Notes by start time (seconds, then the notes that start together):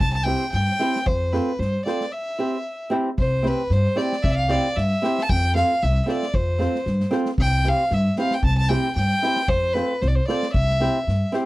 0.00 C2 A5, kick
0.13 A5
0.24 C4 E4 G4 C5 G5, snare
0.52 G2 G5, snare
0.79 C4 E4 G4 C5, snare
0.96 snare
1.06 F2 C5, kick
1.32 C4 F4 A4 B4 C5, snare
1.59 G2 C5, snare
1.85 C4 F4 A4 C5 D5, snare
2.00 snare
2.12 E5
2.38 C4 E4 G4 C5
2.90 C4 E4 G4 C5
3.18 C2 C5, kick
3.43 C4 E4 G4 C5, snare
3.47 B4
3.70 G2 C5, snare
3.96 C4 E4 G4 C5 D5, snare
4.12 snare
4.22 C2 D5 E5, kick
4.31 E5
4.36 F5
4.49 C4 E4 G4 C5 D5, snare
4.76 G2 E5, snare
5.02 C4 E4 G4 C5, snare
5.18 snare
5.23 A5
5.29 F2 G5, kick
5.54 C4 F4 A4 C5 F5, snare
5.83 C2 E5, snare
6.03 C4 F4 E5
6.08 A4 C5 D5, snare
6.22 snare
6.33 F2 C5, kick
6.58 C4 F4 A4 C5, snare
6.75 snare
6.86 G2, snare
7.00 snare
7.11 C4 F4 A4 C5, snare
7.25 snare
7.38 C2 G5, kick
7.64 C4 E4 G4 C5 F5, snare
7.90 G2 E5, snare
8.16 C4 E4 G4 C5 F5, snare
8.31 G5, snare
8.43 C2 A5, kick
8.57 A5
8.69 C4 E4 G4 C5 G5, snare
8.95 G2 G5, snare
9.22 C4 E4 G4 C5, snare
9.36 snare
9.48 F2 C5, kick
9.73 C4 F4 A4 B4 C5, snare
10.01 C2 C5, snare
10.08 D5
10.15 C5
10.27 C4 F4 A4 C5 D5, snare
10.43 snare
10.53 C2 E5, kick
10.70 snare
10.80 C4 E4 G4 C5, snare
11.07 G2, snare
11.32 C4 E4 G4 C5, snare